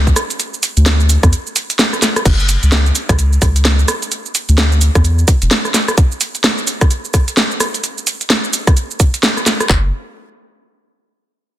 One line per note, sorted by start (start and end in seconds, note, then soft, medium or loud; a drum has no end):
0.00 0.13 C#2 loud
0.07 kick medium
0.07 shaker soft
0.16 cross-stick medium
0.16 open hi-hat loud
0.16 shaker medium
0.30 closed hi-hat soft
0.30 shaker soft
0.40 closed hi-hat medium
0.40 shaker soft
0.54 shaker soft
0.63 open hi-hat loud
0.63 shaker medium
0.77 1.18 D2 medium
0.77 closed hi-hat soft
0.77 shaker soft
0.86 snare loud
0.86 closed hi-hat medium
0.86 shaker soft
1.00 shaker soft
1.09 open hi-hat loud
1.09 shaker medium
1.23 1.32 E2 loud
1.23 kick loud
1.23 cross-stick medium
1.23 closed hi-hat medium
1.23 shaker soft
1.33 closed hi-hat medium
1.33 shaker soft
1.47 shaker soft
1.56 open hi-hat loud
1.56 shaker medium
1.70 closed hi-hat medium
1.70 shaker soft
1.79 snare loud
1.79 closed hi-hat medium
1.79 shaker soft
1.93 cross-stick soft
1.93 shaker soft
2.02 snare medium
2.02 open hi-hat loud
2.02 shaker medium
2.16 cross-stick medium
2.16 closed hi-hat soft
2.16 shaker soft
2.25 2.57 F#1 loud
2.25 kick loud
2.25 closed hi-hat medium
2.25 crash loud
2.25 shaker soft
2.40 shaker soft
2.49 open hi-hat loud
2.49 shaker medium
2.63 2.92 C#2 medium
2.63 closed hi-hat soft
2.63 shaker soft
2.72 snare loud
2.72 closed hi-hat medium
2.72 shaker soft
2.86 shaker soft
2.95 open hi-hat loud
2.95 shaker medium
3.09 3.38 C#2 loud
3.09 kick loud
3.09 cross-stick medium
3.09 closed hi-hat medium
3.09 shaker soft
3.19 closed hi-hat medium
3.19 shaker soft
3.33 shaker soft
3.42 3.85 C#2 medium
3.42 kick loud
3.42 cross-stick medium
3.42 open hi-hat loud
3.42 shaker medium
3.56 closed hi-hat medium
3.56 shaker soft
3.65 snare loud
3.65 closed hi-hat medium
3.65 shaker soft
3.79 shaker soft
3.88 cross-stick medium
3.88 open hi-hat loud
3.88 shaker medium
4.02 closed hi-hat soft
4.02 shaker soft
4.12 closed hi-hat medium
4.12 shaker soft
4.26 shaker soft
4.35 open hi-hat loud
4.35 shaker medium
4.49 4.90 D2 medium
4.49 closed hi-hat soft
4.49 shaker soft
4.58 snare loud
4.58 closed hi-hat medium
4.58 shaker soft
4.72 shaker soft
4.81 open hi-hat loud
4.81 shaker medium
4.95 5.24 E2 loud
4.95 kick loud
4.95 cross-stick medium
4.95 closed hi-hat medium
4.95 shaker soft
5.05 closed hi-hat medium
5.05 shaker soft
5.19 shaker soft
5.28 kick loud
5.28 open hi-hat loud
5.28 shaker medium
5.42 5.49 E1 loud
5.42 closed hi-hat medium
5.42 shaker soft
5.51 snare loud
5.51 closed hi-hat medium
5.51 shaker soft
5.65 cross-stick soft
5.65 shaker soft
5.74 snare medium
5.74 open hi-hat loud
5.74 shaker medium
5.88 cross-stick medium
5.88 closed hi-hat soft
5.88 shaker soft
5.98 kick loud
5.98 closed hi-hat medium
5.98 shaker soft
6.12 shaker soft
6.21 open hi-hat loud
6.21 shaker medium
6.35 closed hi-hat soft
6.35 shaker soft
6.44 snare loud
6.44 closed hi-hat medium
6.44 shaker soft
6.58 shaker soft
6.67 open hi-hat loud
6.67 shaker medium
6.81 kick loud
6.81 cross-stick medium
6.81 closed hi-hat medium
6.81 shaker soft
6.91 closed hi-hat medium
6.91 shaker soft
7.05 shaker soft
7.14 kick loud
7.14 cross-stick medium
7.14 open hi-hat loud
7.14 shaker medium
7.28 closed hi-hat medium
7.28 shaker soft
7.37 snare loud
7.37 closed hi-hat medium
7.37 shaker soft
7.51 shaker soft
7.60 cross-stick medium
7.60 open hi-hat loud
7.60 shaker medium
7.74 closed hi-hat soft
7.74 shaker soft
7.84 closed hi-hat medium
7.84 shaker soft
7.98 shaker soft
8.07 open hi-hat loud
8.07 shaker medium
8.21 closed hi-hat soft
8.21 shaker soft
8.30 snare loud
8.30 closed hi-hat medium
8.30 shaker soft
8.44 shaker soft
8.53 open hi-hat loud
8.53 shaker medium
8.67 kick loud
8.67 cross-stick medium
8.67 closed hi-hat medium
8.67 shaker soft
8.77 closed hi-hat medium
8.77 shaker soft
8.91 shaker soft
9.00 kick loud
9.00 open hi-hat loud
9.00 shaker medium
9.14 closed hi-hat medium
9.14 shaker soft
9.23 snare loud
9.23 closed hi-hat medium
9.23 shaker soft
9.37 cross-stick soft
9.37 shaker soft
9.46 snare medium
9.46 open hi-hat medium
9.46 shaker medium
9.60 cross-stick medium
9.60 closed hi-hat soft
9.60 shaker soft
9.70 9.91 F#1 loud
9.70 kick loud
9.70 clap medium